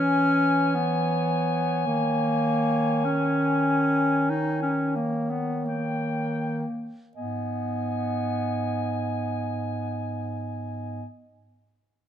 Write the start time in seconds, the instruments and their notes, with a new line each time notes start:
Already playing: bass clarinet E3, clarinet C#4 C#5, soprano saxophone G#5
0.75 clarinet B3
1.86 bass clarinet D#3, clarinet A#3
3.05 clarinet C#4
4.30 clarinet D#4
4.62 clarinet C#4
4.96 clarinet A#3
5.30 clarinet B3
5.65 clarinet A#3, soprano saxophone G5
7.16 bass clarinet G#2, clarinet B3 D#5, soprano saxophone G#5